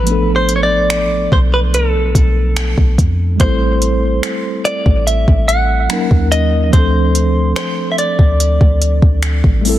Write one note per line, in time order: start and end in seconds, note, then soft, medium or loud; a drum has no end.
0.00 1.28 A1 loud
0.00 3.34 F3 medium
0.00 0.31 B4 medium
0.06 3.35 A3 medium
0.06 3.36 B3 medium
0.06 closed hi-hat medium
0.10 3.37 D4 medium
0.10 3.38 A4 medium
0.36 0.54 C5 medium
0.49 closed hi-hat medium
0.56 0.62 C#5 medium
0.63 1.32 D5 medium
0.90 finger snap loud
0.90 closed hi-hat medium
1.32 1.76 B1 medium
1.32 1.38 C5 medium
1.32 kick medium
1.54 1.59 B4 medium
1.74 1.96 C2 loud
1.74 2.95 A4 medium
1.74 closed hi-hat medium
1.95 2.14 B1 medium
2.15 2.75 B1 loud
2.15 kick medium
2.15 closed hi-hat medium
2.56 finger snap loud
2.56 closed hi-hat medium
2.78 2.98 B1 medium
2.78 kick medium
2.98 3.38 F2 loud
2.98 kick loud
2.98 closed hi-hat medium
3.36 5.84 G3 medium
3.36 5.85 A3 medium
3.36 kick loud
3.36 closed hi-hat medium
3.40 4.20 A1 loud
3.40 5.86 C4 medium
3.40 5.87 E4 medium
3.40 4.61 C5 medium
3.44 5.88 A4 medium
3.82 closed hi-hat medium
4.23 finger snap loud
4.23 closed hi-hat medium
4.65 5.06 D5 medium
4.65 closed hi-hat medium
4.86 5.26 A1 loud
4.86 kick medium
5.07 5.48 E5 medium
5.07 closed hi-hat medium
5.28 5.88 A1 loud
5.28 kick loud
5.48 6.28 F#5 loud
5.48 closed hi-hat medium
5.89 6.73 F#3 medium
5.89 6.73 A#3 medium
5.89 6.74 C#4 medium
5.89 6.74 D#4 medium
5.89 6.75 A#4 medium
5.89 finger snap loud
5.89 closed hi-hat medium
6.11 6.71 D#2 loud
6.11 kick medium
6.32 6.73 D#5 medium
6.32 closed hi-hat medium
6.70 7.53 D2 loud
6.70 9.59 F3 medium
6.70 9.60 A3 medium
6.70 7.52 C5 medium
6.70 kick loud
6.70 closed hi-hat medium
6.74 9.61 C4 medium
6.74 9.62 D4 medium
6.78 9.63 A4 medium
7.15 closed hi-hat medium
7.56 7.89 C5 medium
7.56 finger snap loud
7.56 closed hi-hat medium
7.92 7.98 E5 medium
7.98 9.19 D5 medium
7.98 closed hi-hat medium
8.19 8.59 D2 loud
8.19 kick medium
8.40 closed hi-hat medium
8.61 9.01 D2 loud
8.61 kick loud
8.82 closed hi-hat medium
9.02 9.42 D2 loud
9.02 kick medium
9.22 finger snap loud
9.22 closed hi-hat medium
9.44 9.79 A1 medium
9.44 kick medium
9.61 9.79 G3 medium
9.61 9.79 A3 medium
9.61 9.79 C4 medium
9.61 open hi-hat medium
9.67 9.79 E4 medium
9.67 9.79 A4 medium